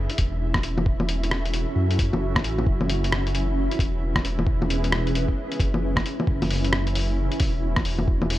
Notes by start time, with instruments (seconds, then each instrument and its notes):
Already playing: ambient pad C#4 E4 F#4 E5
0.10 closed hi-hat
0.18 detuned saw bass E1, kick, closed hi-hat
0.37 ambient pad A4
0.54 kick, cross-stick, low bongo
0.63 closed hi-hat
0.78 low bongo
0.86 kick
1.00 low bongo
1.09 closed hi-hat
1.23 closed hi-hat
1.31 cross-stick
1.45 closed hi-hat
1.54 closed hi-hat
1.76 detuned saw bass F#2
1.91 closed hi-hat
1.99 kick, closed hi-hat
2.13 detuned saw bass F#1, low bongo
2.36 kick, cross-stick, low bongo
2.43 detuned saw bass A1, closed hi-hat
2.58 low bongo
2.67 detuned saw bass F#1, kick
2.81 low bongo
2.90 ambient pad B4, closed hi-hat
3.04 closed hi-hat
3.12 cross-stick
3.27 closed hi-hat
3.35 closed hi-hat
3.51 ambient pad G#4
3.71 closed hi-hat
3.79 detuned saw bass E1, kick, closed hi-hat
4.16 kick, cross-stick, low bongo
4.25 closed hi-hat
4.39 low bongo
4.47 kick
4.62 low bongo
4.70 closed hi-hat
4.84 closed hi-hat
4.92 cross-stick
5.07 closed hi-hat
5.15 closed hi-hat
5.28 kick
5.52 closed hi-hat
5.60 detuned saw bass F#1, kick, closed hi-hat
5.74 low bongo
5.96 kick, cross-stick, low bongo
6.06 closed hi-hat
6.20 low bongo
6.27 detuned saw bass F#1, kick
6.42 open hi-hat, low bongo
6.51 open hi-hat
6.64 closed hi-hat
6.71 ambient pad F#4, cross-stick
6.87 closed hi-hat
6.95 open hi-hat
7.32 closed hi-hat
7.40 detuned saw bass E1, kick, open hi-hat
7.62 ambient pad A4
7.76 kick, cross-stick, low bongo
7.85 open hi-hat
7.99 low bongo
8.08 kick
8.22 low bongo
8.30 open hi-hat